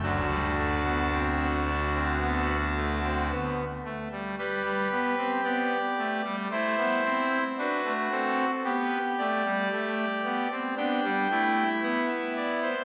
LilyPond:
<<
  \new Staff \with { instrumentName = "Pipe organ" } { \time 4/4 \key g \major \tempo 4 = 56 << { <d, d a''>2.~ <d, d a''>8 r8 | b'4 d''4 c''4 b'8 a'8 | b'8 d''4. g''4 fis''16 e''16 d''16 c''16 | } \\ { fis'2.~ fis'8 r8 | g'2 e'4 fis'4 | g'2 d'8 e'4. | } >> }
  \new Staff \with { instrumentName = "Pipe organ" } { \time 4/4 \key g \major fis16 g16 a16 b16 c'8 d'16 c'16 b8 a16 c'16 b8 a16 g16 | g16 g16 b16 c'16 b8 a16 g16 a16 b16 c'8 d'16 a16 c'8 | b8 a16 g16 a8 b16 c'16 b16 g16 a8 b4 | }
>>